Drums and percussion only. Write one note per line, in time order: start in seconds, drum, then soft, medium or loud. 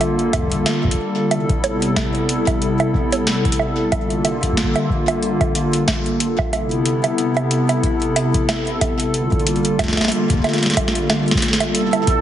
0.01 closed hi-hat soft
0.01 high bongo soft
0.19 closed hi-hat soft
0.33 kick loud
0.33 closed hi-hat medium
0.33 high bongo medium
0.38 kick medium
0.42 kick medium
0.47 kick medium
0.52 kick soft
0.52 closed hi-hat medium
0.55 kick soft
0.59 kick soft
0.62 kick soft
0.62 snare loud
0.62 closed hi-hat medium
0.62 high bongo soft
0.84 kick loud
0.88 kick medium
0.88 closed hi-hat medium
0.94 kick medium
1.31 closed hi-hat soft
1.31 high bongo medium
1.49 kick loud
1.49 closed hi-hat soft
1.64 closed hi-hat medium
1.64 high bongo medium
1.82 closed hi-hat medium
1.96 kick loud
1.96 snare loud
1.96 closed hi-hat soft
1.96 high bongo soft
2.15 closed hi-hat soft
2.29 closed hi-hat medium
2.47 kick loud
2.47 closed hi-hat soft
2.47 high bongo soft
2.62 closed hi-hat soft
2.80 closed hi-hat soft
2.80 high bongo medium
2.94 kick loud
3.12 closed hi-hat medium
3.12 high bongo soft
3.27 snare loud
3.27 closed hi-hat soft
3.45 kick loud
3.45 closed hi-hat soft
3.52 closed hi-hat medium
3.59 high bongo medium
3.92 kick loud
3.92 closed hi-hat soft
3.92 high bongo medium
4.10 closed hi-hat soft
4.25 closed hi-hat medium
4.25 high bongo medium
4.43 kick soft
4.43 closed hi-hat soft
4.53 kick medium
4.57 snare loud
4.57 closed hi-hat soft
4.63 kick medium
4.76 closed hi-hat soft
4.76 high bongo medium
4.90 kick loud
5.08 closed hi-hat soft
5.08 high bongo medium
5.23 closed hi-hat soft
5.41 kick loud
5.41 closed hi-hat soft
5.41 high bongo medium
5.55 closed hi-hat medium
5.73 closed hi-hat soft
5.88 kick loud
5.88 snare loud
5.88 closed hi-hat soft
5.88 high bongo medium
6.06 closed hi-hat soft
6.20 closed hi-hat medium
6.39 kick loud
6.39 high bongo medium
6.53 closed hi-hat medium
6.53 high bongo medium
6.71 closed hi-hat soft
6.86 closed hi-hat medium
7.04 closed hi-hat medium
7.04 high bongo medium
7.18 closed hi-hat soft
7.37 closed hi-hat soft
7.37 high bongo medium
7.51 closed hi-hat medium
7.69 closed hi-hat medium
7.69 high bongo medium
7.83 kick loud
7.83 closed hi-hat soft
8.02 closed hi-hat soft
8.16 closed hi-hat medium
8.16 high bongo medium
8.34 kick loud
8.34 closed hi-hat medium
8.49 snare loud
8.49 closed hi-hat medium
8.49 high bongo medium
8.67 closed hi-hat soft
8.81 kick loud
8.81 closed hi-hat medium
8.81 high bongo medium
9.00 closed hi-hat medium
9.14 closed hi-hat medium
9.32 kick loud
9.32 closed hi-hat soft
9.39 closed hi-hat soft
9.47 closed hi-hat medium
9.56 closed hi-hat soft
9.65 closed hi-hat medium
9.79 kick medium
9.79 snare soft
9.79 closed hi-hat medium
9.79 high bongo medium
9.84 kick medium
9.84 snare medium
9.88 kick medium
9.88 snare medium
9.93 kick medium
9.93 snare medium
9.97 kick soft
9.97 snare medium
9.97 closed hi-hat soft
9.97 high bongo soft
10.01 kick soft
10.01 snare medium
10.01 high bongo soft
10.04 kick soft
10.04 snare medium
10.04 high bongo soft
10.08 kick soft
10.08 snare loud
10.08 closed hi-hat medium
10.08 high bongo soft
10.30 kick loud
10.30 closed hi-hat medium
10.33 kick medium
10.39 kick medium
10.44 snare soft
10.44 closed hi-hat soft
10.44 high bongo medium
10.49 snare soft
10.53 snare soft
10.53 closed hi-hat soft
10.58 snare soft
10.63 snare soft
10.63 closed hi-hat soft
10.66 snare medium
10.70 snare medium
10.70 closed hi-hat soft
10.73 kick loud
10.73 snare medium
10.73 closed hi-hat loud
10.73 high bongo medium
10.88 snare medium
10.95 closed hi-hat medium
11.10 snare medium
11.10 closed hi-hat medium
11.10 high bongo medium
11.28 snare medium
11.28 closed hi-hat soft
11.35 kick loud
11.35 snare medium
11.42 snare medium
11.42 closed hi-hat medium
11.48 snare medium
11.53 snare loud
11.60 snare soft
11.60 closed hi-hat medium
11.60 high bongo medium
11.75 closed hi-hat medium
11.93 closed hi-hat soft
11.93 high bongo medium
12.07 kick loud
12.07 closed hi-hat medium